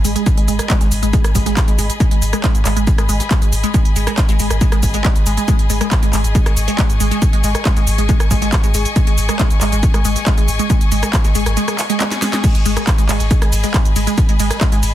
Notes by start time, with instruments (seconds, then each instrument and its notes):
Already playing: string section G#4 D#5 G#5 B5
0.05 sub bass G#1, synth arpeggio sound G#3, closed hi-hat, open hi-hat, shaker
0.16 synth arpeggio sound G#3, closed hi-hat, shaker
0.26 kick, closed hi-hat, shaker
0.37 sub bass G#1, synth arpeggio sound G#3, closed hi-hat
0.48 sub bass G#1, synth arpeggio sound G#3, closed hi-hat, open hi-hat, shaker
0.59 cross-stick, closed hi-hat, shaker
0.70 synth arpeggio sound G#3, kick, snare, clap, closed hi-hat, shaker
0.81 sub bass G#1, synth arpeggio sound G#3, snare, closed hi-hat, shaker
0.92 sub bass G#1, closed hi-hat, open hi-hat, shaker
1.03 sub bass G#1, synth arpeggio sound G#3, closed hi-hat, shaker
1.13 synth arpeggio sound G#3, kick, closed hi-hat, shaker
1.24 sub bass G#1, cross-stick, closed hi-hat, shaker
1.35 sub bass G#1, synth arpeggio sound G#3, kick, snare, closed hi-hat, open hi-hat, shaker
1.46 synth arpeggio sound G#3, snare, closed hi-hat, shaker
1.57 kick, snare, clap, closed hi-hat, shaker
1.68 sub bass G#1, synth arpeggio sound G#3, closed hi-hat, shaker
1.78 sub bass G#1, synth arpeggio sound G#3, closed hi-hat, open hi-hat, shaker
1.90 closed hi-hat, shaker
2.00 synth arpeggio sound G#3, kick, closed hi-hat, shaker
2.11 sub bass G#1, synth arpeggio sound G#3, closed hi-hat
2.22 sub bass G#1, closed hi-hat, open hi-hat, shaker
2.33 synth arpeggio sound G#3, cross-stick, closed hi-hat, shaker
2.44 synth arpeggio sound G#3, kick, snare, clap, closed hi-hat, shaker
2.55 sub bass G#1, closed hi-hat, shaker
2.65 sub bass G#1, synth arpeggio sound G#3, clap, closed hi-hat, open hi-hat, shaker
2.76 sub bass G#1, synth arpeggio sound G#3, closed hi-hat, shaker
2.87 kick, closed hi-hat, shaker
2.98 sub bass G#1, synth arpeggio sound G#3, cross-stick, closed hi-hat, shaker
3.09 sub bass G#1, synth arpeggio sound G#3, closed hi-hat, open hi-hat, shaker
3.20 snare, closed hi-hat, shaker
3.31 synth arpeggio sound G#3, kick, snare, clap, closed hi-hat, shaker
3.42 sub bass G#1, synth arpeggio sound G#3, closed hi-hat, shaker
3.52 sub bass G#1, closed hi-hat, open hi-hat, shaker
3.64 synth arpeggio sound G#3, closed hi-hat, shaker
3.74 synth arpeggio sound G#3, kick, closed hi-hat, shaker
3.85 sub bass G#1, closed hi-hat
3.96 sub bass G#1, synth arpeggio sound G#3, closed hi-hat, open hi-hat, shaker
4.07 synth arpeggio sound G#3, cross-stick, closed hi-hat, shaker
4.18 kick, snare, clap, closed hi-hat, shaker
4.29 sub bass G#1, synth arpeggio sound G#3, snare, closed hi-hat, shaker
4.39 sub bass G#1, synth arpeggio sound G#3, closed hi-hat, open hi-hat, shaker
4.50 sub bass G#1, cross-stick, closed hi-hat, shaker
4.61 synth arpeggio sound G#3, kick, closed hi-hat, shaker
4.72 sub bass G#1, synth arpeggio sound G#3, cross-stick, closed hi-hat, shaker
4.83 sub bass G#1, kick, snare, closed hi-hat, open hi-hat, shaker
4.94 synth arpeggio sound G#3, snare, closed hi-hat, shaker
5.04 synth arpeggio sound G#3, kick, snare, clap, closed hi-hat, shaker
5.16 sub bass G#1, closed hi-hat, shaker
5.26 sub bass G#1, synth arpeggio sound G#3, closed hi-hat, open hi-hat, shaker
5.37 synth arpeggio sound G#3, closed hi-hat, shaker
5.48 synth arpeggio sound G#3, kick, closed hi-hat, shaker
5.59 sub bass G#1, closed hi-hat
5.70 sub bass G#1, synth arpeggio sound G#3, closed hi-hat, open hi-hat, shaker
5.81 synth arpeggio sound G#3, cross-stick, closed hi-hat, shaker
5.91 kick, snare, clap, closed hi-hat, shaker
6.03 sub bass G#1, synth arpeggio sound G#3, closed hi-hat, shaker
6.13 sub bass G#1, synth arpeggio sound G#3, clap, closed hi-hat, open hi-hat, shaker
6.24 sub bass G#1, closed hi-hat, shaker
6.35 synth arpeggio sound G#3, kick, closed hi-hat, shaker
6.46 sub bass G#1, synth arpeggio sound G#3, string section C#6, cross-stick, closed hi-hat, shaker
6.57 sub bass G#1, closed hi-hat, open hi-hat, shaker
6.68 synth arpeggio sound G#3, snare, closed hi-hat, shaker
6.78 synth arpeggio sound G#3, kick, snare, clap, closed hi-hat, shaker
6.89 sub bass G#1, closed hi-hat, shaker
7.00 sub bass G#1, synth arpeggio sound G#3, closed hi-hat, open hi-hat, shaker
7.11 synth arpeggio sound G#3, closed hi-hat, shaker
7.22 kick, closed hi-hat, shaker
7.33 sub bass G#1, synth arpeggio sound G#3, closed hi-hat
7.44 sub bass G#1, synth arpeggio sound G#3, closed hi-hat, open hi-hat, shaker
7.55 cross-stick, closed hi-hat, shaker
7.65 synth arpeggio sound G#3, kick, snare, clap, closed hi-hat, shaker
7.76 sub bass G#1, synth arpeggio sound G#3, snare, closed hi-hat, shaker
7.87 sub bass G#1, closed hi-hat, open hi-hat, shaker
7.98 sub bass G#1, synth arpeggio sound G#3, closed hi-hat, shaker
8.09 synth arpeggio sound G#3, kick, closed hi-hat, shaker
8.20 sub bass G#1, cross-stick, closed hi-hat, shaker
8.31 sub bass G#1, synth arpeggio sound G#3, kick, snare, closed hi-hat, open hi-hat, shaker
8.42 synth arpeggio sound G#3, snare, closed hi-hat, shaker
8.52 kick, snare, clap, closed hi-hat, shaker
8.64 sub bass G#1, synth arpeggio sound G#3, closed hi-hat, shaker
8.74 sub bass G#1, synth arpeggio sound G#3, closed hi-hat, open hi-hat, shaker
8.85 closed hi-hat, shaker
8.96 synth arpeggio sound G#3, kick, closed hi-hat, shaker
9.07 sub bass G#1, synth arpeggio sound G#3, closed hi-hat
9.18 sub bass G#1, closed hi-hat, open hi-hat, shaker
9.29 synth arpeggio sound G#3, cross-stick, closed hi-hat, shaker
9.39 synth arpeggio sound G#3, kick, snare, clap, closed hi-hat, shaker
9.51 sub bass G#1, closed hi-hat, shaker
9.61 sub bass G#1, synth arpeggio sound G#3, clap, closed hi-hat, open hi-hat, shaker
9.72 sub bass G#1, synth arpeggio sound G#3, closed hi-hat, shaker
9.83 kick, closed hi-hat, shaker
9.94 sub bass G#1, synth arpeggio sound G#3, cross-stick, closed hi-hat, shaker
10.05 sub bass G#1, synth arpeggio sound G#3, closed hi-hat, open hi-hat, shaker
10.16 snare, closed hi-hat, shaker
10.26 synth arpeggio sound G#3, kick, snare, clap, closed hi-hat, shaker
10.38 sub bass G#1, synth arpeggio sound G#3, closed hi-hat, shaker
10.48 sub bass G#1, open hi-hat, shaker
10.59 synth arpeggio sound G#3, closed hi-hat, shaker
10.70 synth arpeggio sound G#3, kick, closed hi-hat, shaker
10.81 sub bass G#1, closed hi-hat, shaker
10.92 sub bass G#1, synth arpeggio sound G#3, closed hi-hat, open hi-hat, shaker
11.03 synth arpeggio sound G#3, cross-stick, closed hi-hat, shaker
11.13 kick, snare, clap, closed hi-hat, shaker
11.24 sub bass G#1, synth arpeggio sound G#3, snare, closed hi-hat, shaker
11.35 sub bass G#1, synth arpeggio sound G#3, closed hi-hat, open hi-hat, shaker
11.46 sub bass G#1, cross-stick, closed hi-hat, shaker
11.57 synth arpeggio sound G#3, closed hi-hat, shaker
11.68 synth arpeggio sound G#3, cross-stick, closed hi-hat, shaker
11.79 snare, clap, closed hi-hat, open hi-hat, shaker
11.90 synth arpeggio sound G#3, snare, closed hi-hat, shaker
12.00 synth arpeggio sound G#3, snare, clap, closed hi-hat, shaker
12.11 snare, closed hi-hat, shaker
12.22 synth arpeggio sound G#3, snare, closed hi-hat, open hi-hat, shaker
12.33 synth arpeggio sound G#3, snare, closed hi-hat, shaker
12.44 synth arpeggio sound G#3, kick, closed hi-hat, crash, ride, shaker
12.55 sub bass G#1, closed hi-hat
12.65 sub bass G#1, synth arpeggio sound G#3, closed hi-hat, open hi-hat, ride, shaker
12.77 synth arpeggio sound G#3, cross-stick, closed hi-hat, shaker
12.87 kick, snare, clap, closed hi-hat, ride, shaker
12.98 sub bass G#1, synth arpeggio sound G#3, closed hi-hat, shaker
13.09 sub bass G#1, synth arpeggio sound G#3, clap, closed hi-hat, open hi-hat, ride, shaker
13.20 sub bass G#1, closed hi-hat, shaker
13.31 synth arpeggio sound G#3, kick, closed hi-hat, ride, shaker
13.42 sub bass G#1, synth arpeggio sound G#3, string section B5, cross-stick, closed hi-hat, shaker
13.52 sub bass G#1, closed hi-hat, open hi-hat, ride, shaker
13.64 synth arpeggio sound G#3, snare, closed hi-hat, shaker
13.74 synth arpeggio sound G#3, kick, snare, clap, closed hi-hat, ride, shaker
13.85 sub bass G#1, closed hi-hat, shaker
13.96 sub bass G#1, synth arpeggio sound G#3, closed hi-hat, open hi-hat, ride, shaker
14.07 synth arpeggio sound G#3, closed hi-hat, shaker
14.18 kick, closed hi-hat, ride, shaker
14.29 sub bass G#1, synth arpeggio sound G#3, closed hi-hat
14.39 sub bass G#1, synth arpeggio sound G#3, closed hi-hat, open hi-hat, ride, shaker
14.51 cross-stick, closed hi-hat, shaker
14.61 synth arpeggio sound G#3, kick, snare, clap, closed hi-hat, ride, shaker
14.72 sub bass G#1, synth arpeggio sound G#3, snare, closed hi-hat, shaker
14.83 sub bass G#1, closed hi-hat, open hi-hat, ride, shaker